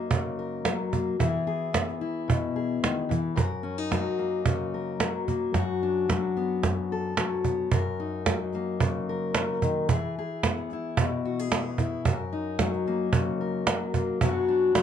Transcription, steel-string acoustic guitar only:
Already playing: F#2 F#3 A#3 D#4 A#4
0.11 C#3
0.39 A#4
0.65 F#3
0.93 A#3
1.19 E3 B3 E4 G#4
1.47 G#4
1.73 B3
2.01 E4
2.28 B2
2.56 G#4
2.83 D#3
3.09 E3
3.36 F#2 A#4
3.63 C#4
3.78 D#4
3.91 F#3
4.19 A#3
4.45 C#3
4.74 A#4
5.00 F#3
5.28 A#3
5.54 F#2 F#4
5.83 D4
6.09 F#3
6.37 B3
6.64 F#2
6.92 A4
7.18 F#3
7.45 B3
7.72 F#2 A#4
8.00 D#4
8.27 F#3
8.55 A#3
8.81 C#3
9.09 A#4
9.36 C#3
9.63 D#3
9.91 E3 G#4
10.19 G#4
10.45 B3
10.73 E4
10.99 B2
11.25 F#4
11.39 G#4
11.52 B3
11.80 E4
12.05 F#2 A#4
12.33 D#4
12.59 F#3
12.88 A#3
13.13 C#3
13.41 A#4
13.68 F#3
13.96 A#3
14.22 F#2 F#3 B3 D4 F#4
14.48 D4
14.75 F#3

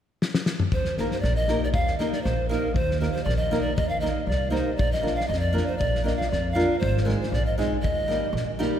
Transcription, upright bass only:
0.74 D#2
1.23 A#1
1.74 D#2
2.25 A#1
2.74 D#2
3.26 A#1
3.78 D#2
4.27 C2
4.79 A#1
5.29 F2
5.80 A#1
6.32 F2
6.82 G#1
7.32 A#1
7.83 D#2
8.33 A#1

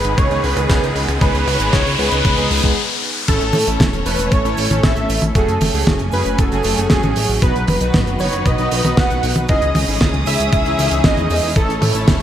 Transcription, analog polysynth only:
Already playing: G#3 B3 D#4 G#4
0.31 G#3 B3 D#4 G#4
0.70 G#3 B3 D#4 G#4
1.21 G#3 B3 D#4 G#4
1.60 G#3 B3 D#4 G#4
1.99 G#3 B3 D#4 G#4
2.38 G#3 B3 D#4 G#4
2.64 G#3 B3 D#4 G#4
3.28 A3 C#4 E4 A4
3.67 A3 C#4 E4 A4
4.06 A3 C#4 E4 A4
4.45 A3 C#4 E4 A4
4.71 A3 C#4 E4 A4
4.83 A3 C#4 E4 A4
5.35 A3 C#4 F#4 G#4
5.74 A3 C#4 F#4 G#4
6.13 A3 C#4 F#4 G#4
6.52 A3 C#4 F#4 G#4
6.77 A3 C#4 F#4 G#4
6.90 A3 C#4 F#4 G#4
7.42 B3 D#4 F#4 B4
7.81 B3 D#4 F#4 B4
8.20 B3 D#4 F#4 B4
8.59 B3 D#4 F#4 B4
8.84 B3 D#4 F#4 B4
8.97 B3 D#4 F#4 B4
9.49 C#4 D#4 E4 G#4
9.88 C#4 D#4 E4 G#4
10.27 C#4 D#4 E4 G#4
10.66 C#4 D#4 E4 G#4
10.91 C#4 D#4 E4 G#4
11.04 C#4 D#4 E4 G#4
11.56 A3 C#4 E4 A4
11.95 A3 C#4 E4 A4

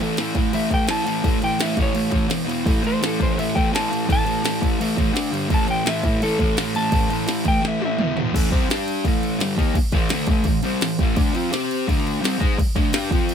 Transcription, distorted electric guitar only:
0.01 A2 E3 A3
0.19 A2 E3 A3
0.36 A2 E3 A3
0.53 A2 E3 A3
0.71 A2 E3 A3
0.88 A2 E3 A3
1.05 A2 E3 A3
1.23 A2 E3 A3
1.42 A2 E3 A3
1.60 A2 E3 A3
1.76 A2 E3 A3
1.94 A2 E3 A3
2.11 A2 E3 A3
2.27 E2 B2 E3
2.46 E2 B2 E3
2.65 A2 E3 A3
2.83 A2 E3 A3
3.01 A2 E3 A3
3.20 A2 E3 A3
3.37 A2 E3 A3
3.55 A2 E3 A3
3.72 A2 E3 A3
3.90 A2 E3 A3
4.06 A2 E3 A3
4.25 A2 E3 A3
4.43 A2 E3 A3
4.61 A2 E3 A3
4.79 A2 E3 A3
4.96 A2 E3 A3
5.13 D3 A3 D4
5.31 G2 D3 G3
5.49 A2 E3 A3
5.66 A2 E3 A3
5.84 A2 E3 A3
6.05 A2 E3 A3
6.22 A2 E3 A3
6.40 A2 E3 A3
6.57 A2 E3 A3
6.75 A2 E3 A3
6.91 A2 E3 A3
7.10 A2 E3 A3
7.27 A2 E3 A3
7.45 A2 E3 A3
7.61 A2 E3 A3
7.80 A2 E3 A3
7.99 E2 B2 E3
8.16 E2 B2 E3
8.32 A2 E3 A3
8.51 C3 G3 C4
8.69 G3 D4 G4
9.05 A2 E3 A3
9.39 G2 D3 G3
9.57 D#3 A#3 D#4
9.74 muted distorted electric guitar stroke
9.92 A2 E3 A3
10.11 D3 A3 D4
10.29 A2 E3 A3
10.47 A2 E3
10.64 C3 G3 C4
10.83 A2 E3
11.00 A2 E3 A3
11.15 D3 A3 D4
11.33 F3 C4 F4
11.51 C4 G4 C5
11.88 D3 A3 D4
12.20 C3 G3 C4
12.38 G#3 D#4 G#4
12.58 muted distorted electric guitar stroke
12.76 D3 A3 D4
12.94 G3 D4 G4
13.11 F3 C4 F4

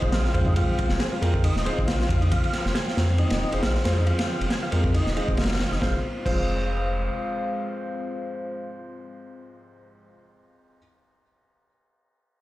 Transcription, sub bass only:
0.02 F1
0.12 A#1
0.34 F2
0.90 F1
1.22 F2
1.56 D#1
1.79 F1
1.87 A#1
2.09 F2
2.65 F1
2.97 F2
3.31 D#1
3.53 F1
3.63 A#1
3.85 F2
4.41 F1
4.72 F2
5.06 D#1
5.28 F1
5.38 F1
5.72 F1
5.82 F1
6.26 F1

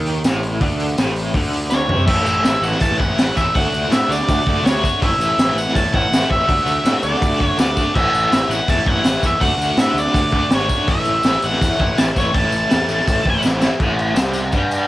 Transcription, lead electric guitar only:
1.70 C#5
2.07 E5
2.63 F#5
2.81 A5
2.98 F#5
3.36 E5
3.55 F#5
3.92 E5
4.11 D5
4.65 C#5
5.03 E5
5.58 F#5
5.75 A5
5.94 F#5
6.30 E5
7.03 D5
7.44 C#5
7.59 D5
7.94 E5
8.50 F#5
8.70 A5
8.88 F#5
9.26 E5
9.40 F#5
9.80 E5
9.99 D5
10.55 C#5
10.89 E5
11.45 F#5
11.98 A5
12.18 C#5
12.34 A5

